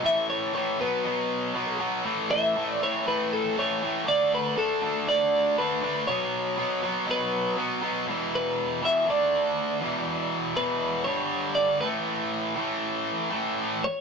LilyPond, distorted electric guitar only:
\new Staff \with { instrumentName = "Distorted electric guitar" } { \clef bass \time 4/4 \key a \major \tempo 4 = 120 <a, e a>4 <a, e a>8 <b, fis b>8 <b, fis b>4 <b, fis b>8 <b, fis b>8 | <a, e a>4 <a, e a>8 <a, e a>8 <a, e a>4 <a, e a>8 <a, e a>8 | <d a d'>4 <d a d'>8 <d a d'>8 <d a d'>4 <d a d'>8 <d a d'>8 | <b, fis b>4 <b, fis b>8 <b, fis b>8 <b, fis b>4 <b, fis b>8 <b, fis b>8 |
<e, b, e>4. <e, b, e>8 <d a d'>4. <e, b, e>8~ | <e, b, e>4 <e, b, e>4 <g, d g>4. <a, e a>8~ | <a, e a>4 <a, e a>4. <a, e a>4 r8 | }